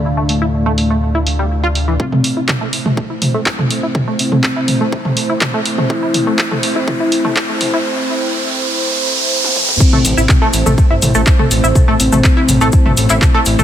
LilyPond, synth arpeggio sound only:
\new Staff \with { instrumentName = "Synth arpeggio sound" } { \time 4/4 \key a \minor \tempo 4 = 123 r16 a16 r16 e'16 r16 a16 r16 a16 r16 e'16 r16 g16 r16 f'16 r16 e16 | r16 a16 r16 e'16 r16 a16 r16 a16 r16 e'16 r16 a16 r16 a16 r16 e'16 | r16 a16 r16 a16 r16 e'16 r16 a16 r16 a16 r16 e'16 r16 a16 r16 a16 | r16 e'16 r16 a16 r16 a16 r16 e'16 r16 e'16 r16 a16 r16 a16 r16 e'16 |
r1 | r16 <a a'>16 r16 <e' e''>16 r16 <a a'>16 r16 <a a'>16 r16 <e' e''>16 r16 <a a'>16 r16 <a a'>16 r16 <e' e''>16 | r16 <a a'>16 r16 <a a'>16 r16 <e' e''>16 r16 <a a'>16 r16 <a a'>16 r16 <e' e''>16 r16 <a a'>16 r16 <a a'>16 | }